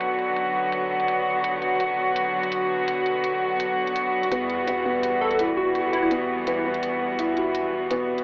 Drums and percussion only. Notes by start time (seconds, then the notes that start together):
0.01 closed hi-hat
0.19 closed hi-hat
0.36 closed hi-hat
0.72 closed hi-hat
1.00 closed hi-hat
1.08 closed hi-hat
1.44 closed hi-hat
1.62 closed hi-hat
1.80 closed hi-hat
2.16 closed hi-hat
2.43 closed hi-hat
2.52 closed hi-hat
2.88 closed hi-hat
3.06 closed hi-hat
3.24 closed hi-hat
3.60 closed hi-hat
3.87 closed hi-hat
3.96 closed hi-hat
4.23 closed hi-hat
4.32 closed hi-hat
4.49 closed hi-hat
4.67 closed hi-hat
5.03 closed hi-hat
5.31 closed hi-hat
5.39 closed hi-hat
5.75 closed hi-hat
5.93 closed hi-hat
6.11 closed hi-hat
6.47 closed hi-hat
6.74 closed hi-hat
6.83 closed hi-hat
7.19 closed hi-hat
7.37 closed hi-hat
7.55 closed hi-hat
7.91 closed hi-hat
8.18 closed hi-hat